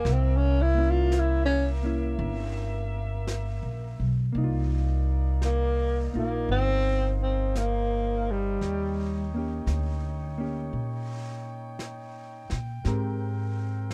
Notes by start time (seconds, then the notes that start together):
Already playing: A#3 A#4
0.05 C2 E5, brush sweep, snare
0.13 C4
0.37 C#4
0.61 E4
0.75 A#3 C#4
0.80 E4
0.90 F4
1.12 brush sweep, snare, hi-hat pedal
1.19 E4
1.45 C#4
1.83 A#3 C#4 E4
2.18 G1, brush sweep
3.27 brush sweep, snare, hi-hat pedal
3.63 A#1
4.00 B1
4.32 C2 A#3 D#4 A#4 D5 F5, brush sweep
4.38 D#4
4.44 F4
5.42 A#3, brush sweep, snare, hi-hat pedal
6.14 A#1 A#3 D#4 F4
6.18 A#3
6.49 G1 C4 C5, brush sweep
7.22 C4
7.55 A#3, brush sweep, snare, hi-hat pedal
8.31 G3
8.61 D#2 C#5 G5, brush sweep, snare
9.34 A#3 C#4 G4
9.66 D2, brush sweep, snare, hi-hat pedal
10.38 A#3 C#4 G4
10.73 A#2, brush sweep
11.79 brush sweep, snare, hi-hat pedal
12.50 A#2, snare
12.84 G#2 G#3 C4 G4 A#4, brush sweep, snare
13.91 brush sweep, snare, hi-hat pedal